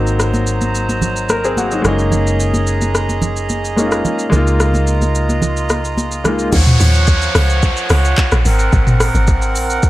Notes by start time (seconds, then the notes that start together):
Already playing: G#1 F#3 A#3 C4 D#4 C5 A#5
0.07 shaker
0.20 cross-stick, shaker
0.34 high conga, shaker
0.47 shaker
0.61 high conga, shaker
0.75 shaker
0.89 high conga, shaker
1.02 low conga, shaker
1.16 shaker
1.29 A#4, cross-stick, high conga, shaker
1.44 C4 G#4, shaker
1.57 A#3 F#4, high conga, shaker
1.71 F#3 D#4, shaker
1.82 F#1 G#3 A#3 G#4 D#5 A#5, cross-stick, low conga, shaker
1.86 C#4 D#4
1.99 shaker
2.12 low conga, shaker
2.27 shaker
2.40 shaker
2.54 high conga, shaker
2.67 shaker
2.81 high conga, shaker
2.95 cross-stick, shaker
3.09 high conga, shaker
3.22 low conga, shaker
3.37 shaker
3.49 high conga, shaker
3.65 shaker
3.76 G#3 A#3 C#4 D#4, high conga, shaker
3.86 F4
3.92 cross-stick, shaker
4.05 low conga, shaker
4.19 shaker
4.30 C#2 G#3 A#3 F4, low conga, shaker
4.34 D#4 F4
4.47 shaker
4.60 cross-stick, shaker
4.74 high conga, shaker
4.87 shaker
5.01 high conga, shaker
5.15 shaker
5.29 high conga, shaker
5.42 low conga, shaker
5.57 shaker
5.69 cross-stick, high conga, shaker
5.85 shaker
5.97 high conga, shaker
6.12 shaker
6.24 G#3 A#3 D#4 F4, cross-stick, low conga, shaker
6.39 shaker
6.52 D#2 F3 C#5 F#5, kick, crash, downlifter, shaker
6.67 mid tom, shaker
6.80 D#2, open hi-hat, shaker
6.95 shaker
7.07 kick, shaker
7.22 shaker
7.35 C#2, cross-stick, open hi-hat, shaker
7.50 shaker
7.63 kick, shaker
7.77 shaker
7.90 C#2, cross-stick, open hi-hat, shaker
8.05 shaker
8.18 kick, clap, shaker
8.32 A#1, cross-stick, shaker
8.45 G#1 C4 A#4, open hi-hat, shaker
8.59 shaker
8.73 G#1, kick, shaker
8.87 mid tom, shaker
9.00 cross-stick, open hi-hat, shaker
9.15 G#1, shaker
9.27 kick, shaker
9.42 shaker
9.55 A#1, open hi-hat, shaker
9.70 shaker
9.83 kick, shaker